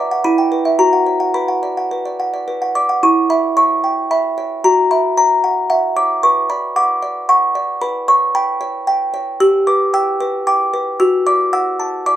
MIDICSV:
0, 0, Header, 1, 2, 480
1, 0, Start_track
1, 0, Key_signature, 2, "minor"
1, 0, Tempo, 551471
1, 1167, Time_signature, 3, 2, 24, 8
1, 3575, Tempo, 530504
1, 10864, End_track
2, 0, Start_track
2, 0, Title_t, "Music box"
2, 0, Program_c, 0, 10
2, 0, Note_on_c, 0, 71, 65
2, 0, Note_on_c, 0, 74, 50
2, 0, Note_on_c, 0, 86, 103
2, 99, Note_on_c, 0, 78, 49
2, 165, Note_off_c, 0, 74, 0
2, 191, Note_off_c, 0, 86, 0
2, 196, Note_off_c, 0, 71, 0
2, 212, Note_off_c, 0, 78, 0
2, 212, Note_on_c, 0, 83, 104
2, 214, Note_on_c, 0, 64, 65
2, 333, Note_on_c, 0, 79, 48
2, 450, Note_on_c, 0, 71, 46
2, 518, Note_off_c, 0, 79, 0
2, 568, Note_on_c, 0, 76, 46
2, 637, Note_off_c, 0, 71, 0
2, 665, Note_off_c, 0, 83, 0
2, 670, Note_off_c, 0, 64, 0
2, 685, Note_off_c, 0, 76, 0
2, 686, Note_on_c, 0, 66, 55
2, 686, Note_on_c, 0, 82, 84
2, 809, Note_on_c, 0, 78, 46
2, 926, Note_on_c, 0, 73, 43
2, 999, Note_off_c, 0, 78, 0
2, 1045, Note_on_c, 0, 78, 44
2, 1119, Note_off_c, 0, 73, 0
2, 1150, Note_off_c, 0, 82, 0
2, 1155, Note_off_c, 0, 66, 0
2, 1167, Note_off_c, 0, 78, 0
2, 1169, Note_on_c, 0, 71, 50
2, 1169, Note_on_c, 0, 83, 74
2, 1291, Note_on_c, 0, 78, 41
2, 1417, Note_on_c, 0, 74, 37
2, 1488, Note_off_c, 0, 78, 0
2, 1544, Note_on_c, 0, 78, 39
2, 1613, Note_off_c, 0, 74, 0
2, 1654, Note_off_c, 0, 71, 0
2, 1665, Note_on_c, 0, 71, 41
2, 1737, Note_off_c, 0, 78, 0
2, 1788, Note_on_c, 0, 74, 38
2, 1912, Note_on_c, 0, 78, 36
2, 1981, Note_off_c, 0, 74, 0
2, 2033, Note_on_c, 0, 74, 37
2, 2103, Note_off_c, 0, 78, 0
2, 2146, Note_off_c, 0, 71, 0
2, 2156, Note_on_c, 0, 71, 41
2, 2224, Note_off_c, 0, 74, 0
2, 2278, Note_on_c, 0, 78, 36
2, 2358, Note_off_c, 0, 83, 0
2, 2396, Note_on_c, 0, 86, 75
2, 2398, Note_on_c, 0, 74, 36
2, 2469, Note_off_c, 0, 78, 0
2, 2518, Note_on_c, 0, 78, 40
2, 2588, Note_off_c, 0, 74, 0
2, 2622, Note_off_c, 0, 71, 0
2, 2625, Note_off_c, 0, 86, 0
2, 2634, Note_off_c, 0, 78, 0
2, 2637, Note_on_c, 0, 64, 52
2, 2639, Note_on_c, 0, 85, 85
2, 2862, Note_off_c, 0, 85, 0
2, 2871, Note_on_c, 0, 76, 40
2, 2873, Note_on_c, 0, 83, 78
2, 3096, Note_off_c, 0, 83, 0
2, 3104, Note_on_c, 0, 73, 43
2, 3105, Note_on_c, 0, 85, 85
2, 3246, Note_off_c, 0, 76, 0
2, 3341, Note_on_c, 0, 79, 43
2, 3481, Note_off_c, 0, 73, 0
2, 3556, Note_off_c, 0, 85, 0
2, 3575, Note_on_c, 0, 76, 41
2, 3577, Note_on_c, 0, 83, 79
2, 3721, Note_off_c, 0, 79, 0
2, 3819, Note_on_c, 0, 73, 44
2, 3963, Note_off_c, 0, 76, 0
2, 4025, Note_off_c, 0, 64, 0
2, 4041, Note_off_c, 0, 83, 0
2, 4060, Note_off_c, 0, 73, 0
2, 4060, Note_on_c, 0, 66, 56
2, 4060, Note_on_c, 0, 82, 85
2, 4290, Note_off_c, 0, 82, 0
2, 4300, Note_on_c, 0, 83, 76
2, 4302, Note_on_c, 0, 76, 43
2, 4529, Note_off_c, 0, 83, 0
2, 4540, Note_on_c, 0, 73, 44
2, 4541, Note_on_c, 0, 82, 88
2, 4682, Note_off_c, 0, 76, 0
2, 4779, Note_on_c, 0, 78, 43
2, 4921, Note_off_c, 0, 73, 0
2, 4998, Note_off_c, 0, 82, 0
2, 5003, Note_off_c, 0, 78, 0
2, 5014, Note_on_c, 0, 76, 46
2, 5014, Note_on_c, 0, 78, 81
2, 5246, Note_off_c, 0, 78, 0
2, 5256, Note_on_c, 0, 73, 46
2, 5256, Note_on_c, 0, 86, 89
2, 5401, Note_off_c, 0, 76, 0
2, 5463, Note_off_c, 0, 66, 0
2, 5488, Note_off_c, 0, 86, 0
2, 5498, Note_off_c, 0, 73, 0
2, 5498, Note_on_c, 0, 85, 80
2, 5499, Note_on_c, 0, 71, 54
2, 5728, Note_off_c, 0, 85, 0
2, 5737, Note_on_c, 0, 74, 45
2, 5737, Note_on_c, 0, 83, 88
2, 5966, Note_off_c, 0, 83, 0
2, 5977, Note_on_c, 0, 78, 51
2, 5977, Note_on_c, 0, 86, 103
2, 6118, Note_off_c, 0, 74, 0
2, 6215, Note_on_c, 0, 74, 48
2, 6358, Note_off_c, 0, 78, 0
2, 6434, Note_off_c, 0, 86, 0
2, 6454, Note_on_c, 0, 78, 51
2, 6454, Note_on_c, 0, 85, 97
2, 6596, Note_off_c, 0, 74, 0
2, 6693, Note_on_c, 0, 74, 52
2, 6834, Note_off_c, 0, 78, 0
2, 6893, Note_off_c, 0, 71, 0
2, 6911, Note_off_c, 0, 85, 0
2, 6930, Note_off_c, 0, 74, 0
2, 6930, Note_on_c, 0, 71, 65
2, 6930, Note_on_c, 0, 83, 97
2, 7159, Note_off_c, 0, 83, 0
2, 7171, Note_on_c, 0, 73, 53
2, 7171, Note_on_c, 0, 85, 100
2, 7400, Note_off_c, 0, 85, 0
2, 7412, Note_on_c, 0, 79, 57
2, 7413, Note_on_c, 0, 83, 102
2, 7554, Note_off_c, 0, 73, 0
2, 7647, Note_on_c, 0, 73, 55
2, 7794, Note_off_c, 0, 79, 0
2, 7871, Note_off_c, 0, 83, 0
2, 7887, Note_on_c, 0, 79, 82
2, 8031, Note_off_c, 0, 73, 0
2, 8117, Note_off_c, 0, 79, 0
2, 8126, Note_on_c, 0, 73, 51
2, 8331, Note_off_c, 0, 71, 0
2, 8366, Note_off_c, 0, 73, 0
2, 8367, Note_on_c, 0, 67, 66
2, 8367, Note_on_c, 0, 88, 113
2, 8599, Note_off_c, 0, 88, 0
2, 8609, Note_on_c, 0, 71, 55
2, 8609, Note_on_c, 0, 86, 86
2, 8842, Note_off_c, 0, 86, 0
2, 8849, Note_on_c, 0, 79, 58
2, 8851, Note_on_c, 0, 88, 114
2, 8997, Note_off_c, 0, 71, 0
2, 9092, Note_on_c, 0, 71, 56
2, 9235, Note_off_c, 0, 79, 0
2, 9313, Note_off_c, 0, 88, 0
2, 9332, Note_on_c, 0, 79, 54
2, 9332, Note_on_c, 0, 86, 96
2, 9475, Note_off_c, 0, 71, 0
2, 9572, Note_on_c, 0, 71, 55
2, 9714, Note_off_c, 0, 79, 0
2, 9774, Note_off_c, 0, 67, 0
2, 9791, Note_off_c, 0, 86, 0
2, 9809, Note_on_c, 0, 88, 102
2, 9811, Note_off_c, 0, 71, 0
2, 9811, Note_on_c, 0, 66, 69
2, 10040, Note_off_c, 0, 88, 0
2, 10052, Note_on_c, 0, 74, 53
2, 10052, Note_on_c, 0, 86, 105
2, 10282, Note_off_c, 0, 86, 0
2, 10291, Note_on_c, 0, 78, 54
2, 10291, Note_on_c, 0, 88, 105
2, 10437, Note_off_c, 0, 74, 0
2, 10531, Note_on_c, 0, 81, 58
2, 10677, Note_off_c, 0, 78, 0
2, 10755, Note_off_c, 0, 88, 0
2, 10773, Note_on_c, 0, 86, 100
2, 10776, Note_on_c, 0, 74, 52
2, 10864, Note_off_c, 0, 66, 0
2, 10864, Note_off_c, 0, 74, 0
2, 10864, Note_off_c, 0, 81, 0
2, 10864, Note_off_c, 0, 86, 0
2, 10864, End_track
0, 0, End_of_file